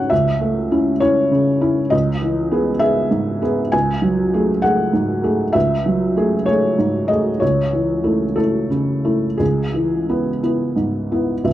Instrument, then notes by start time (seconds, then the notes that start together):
felt piano
Already playing: C#2 G#2 A3 C#4 F#4 B4 C#5 F#5
0.10 C#2 E5
0.41 A3
0.71 C#4 E4
1.00 C#4 E4 C#5
1.31 C#3
1.61 C#4 E4
1.90 C#2 D#5
2.22 E3
2.51 B3 G#4
2.79 B3 G#4 E5
3.11 G#2
3.42 B3 G#4
3.72 C#2 G#5
4.02 F#3
4.34 A3 G#4
4.62 A3 G#4 F#5
4.93 G#2
5.24 A3 G#4
5.53 C#2 E5
5.86 F#3
6.17 A3 G#4
6.46 A3 G#4 C#5
6.78 G#2
7.08 A3 G#4 D#5
7.40 C#2 C#5
7.73 E3
8.04 A3 E4
8.36 A3 E4 A4
8.70 C#3
9.05 A3 E4
9.37 C#2 G#4
9.74 E3
10.09 B3 E4
10.43 B3 E4
10.76 G#2
11.12 B3 E4
11.44 C#2 E5